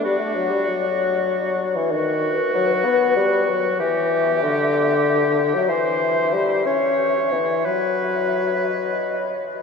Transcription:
0.04 G3 F#4 D5
0.19 A3
0.34 F#3
0.51 G3
0.67 F#3
1.76 E3
1.91 D#3 F#4 B4
2.54 F#3
2.84 B3
3.16 G3
3.49 F#3
3.80 E3 G4 E5
4.43 D3
5.54 F#3
5.69 E3 C5 E5
6.33 G3
6.66 C#4 C#5
7.32 E3
7.65 F#3 B4 E5
8.68 D#5

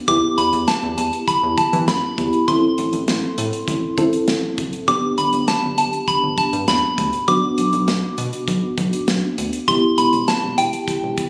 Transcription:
0.08 E2 B3 E4 G4 D6, kick, closed hi-hat
0.38 E2 B5, closed hi-hat
0.53 E2, closed hi-hat
0.68 A5, snare, closed hi-hat
0.83 E2
0.98 E2 A5, closed hi-hat
1.13 closed hi-hat
1.28 B5, kick, closed hi-hat
1.43 E2
1.58 A5, kick, closed hi-hat
1.73 E3, closed hi-hat
1.88 F#2 B5, snare, closed hi-hat
2.18 E2 B3 E4 G4, kick, closed hi-hat
2.33 closed hi-hat
2.48 A1 C4 E4 A4 C6, kick, closed hi-hat
2.78 A1, closed hi-hat
2.93 A1, closed hi-hat
3.08 A1, snare, closed hi-hat
3.38 A2, closed hi-hat
3.53 closed hi-hat
3.68 A1, kick, closed hi-hat
3.98 A1 C4 E4 A4, kick, closed hi-hat
4.13 closed hi-hat
4.28 A1, snare, closed hi-hat
4.58 F#1, kick, closed hi-hat
4.73 closed hi-hat
4.88 G1 B3 D4 G4 D6, kick, closed hi-hat
5.18 G1 B5, closed hi-hat
5.33 G1, closed hi-hat
5.48 A5, snare, closed hi-hat
5.63 G1
5.78 G1 A5, closed hi-hat
5.93 closed hi-hat
6.08 B5, kick, closed hi-hat
6.23 G1
6.38 A5, kick, closed hi-hat
6.53 G2, closed hi-hat
6.68 E2 B5, snare, closed hi-hat
6.98 D2, kick, closed hi-hat
7.13 closed hi-hat
7.28 B1 B3 D4 F#4 D6, kick, closed hi-hat
7.58 B1, closed hi-hat
7.73 B1, closed hi-hat
7.88 B1, snare, closed hi-hat
8.18 B2, closed hi-hat
8.33 closed hi-hat
8.48 B1, kick, closed hi-hat
8.78 B1, kick, closed hi-hat
8.93 closed hi-hat
9.08 B1, snare, closed hi-hat
9.38 D2, closed hi-hat
9.53 closed hi-hat
9.68 E1 B3 E4 G4 C6, kick, closed hi-hat
9.98 E1 B5, closed hi-hat
10.13 E1, closed hi-hat
10.28 A5, snare, closed hi-hat
10.43 E1
10.58 E1 G5, closed hi-hat
10.73 closed hi-hat
10.88 kick, closed hi-hat
11.03 E1
11.18 kick, closed hi-hat

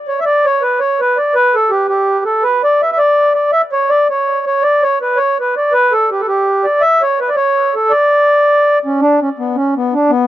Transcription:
0.08 C#5
0.20 E5
0.25 D5
0.46 C#5
0.62 B4
0.80 C#5
1.01 B4
1.17 D5
1.35 B4
1.55 A4
1.70 G4
1.89 G4
2.25 A4
2.43 B4
2.64 D5
2.82 E5
2.92 E5
2.98 D5
3.35 D5
3.52 E5
3.72 C#5
3.90 D5
4.10 C#5
4.46 C#5
4.63 D5
4.83 C#5
5.02 B4
5.17 C#5
5.40 B4
5.56 D5
5.73 B4
5.92 A4
6.11 G4
6.20 A4
6.28 G4
6.64 D5
6.81 E5
7.02 C#5
7.20 B4
7.29 D5
7.36 C#5
7.75 A4
7.90 D5
8.85 C#4
9.01 D4
9.22 C#4
9.39 B3
9.56 C#4
9.77 B3
9.94 D4
10.10 B3

